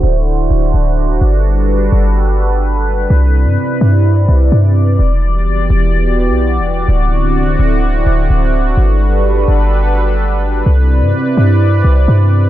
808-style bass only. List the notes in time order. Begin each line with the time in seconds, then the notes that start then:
0.03 D1
0.51 D1
0.74 D1
1.21 G1
1.92 G1
3.10 C2
3.46 G2
3.81 G2
4.29 C2
4.52 G2
4.99 E1
5.47 F#1
5.70 E1
6.29 B1
6.59 E1
6.89 D1
7.59 D1
8.07 D1
8.30 D1
8.77 G1
9.48 G1
10.66 C2
11.02 G2
11.37 G2
11.85 C2
12.08 G2